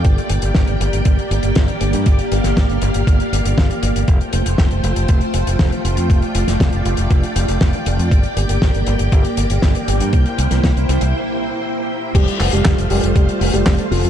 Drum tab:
CC |----------------|----------------|----------------|----------------|
HH |xxxxxxxxxxxxxxxx|xxxxxxxxxxxxxxxx|xxxxxxxxxxxxxxxx|xxxxxxxxxxxxxxxx|
CP |----------------|----------------|----------------|----------------|
SD |----o-------o---|---oo-------o---|----o-------o---|---oo-------o---|
BD |o---o---o---o---|o---o---o---o---|o---o---o---o---|o---o---o---o---|

CC |----------------|----------------|x---------------|
HH |xxxxxxxxxxxxxxxx|xxxxxxxx--------|xxoxxxoxxxoxoxox|
CP |----------------|----------------|--x-x-------x---|
SD |----o-------o---|---oo-----------|----o-------o---|
BD |o---o---o---o---|o---o-----------|o---o---o---o---|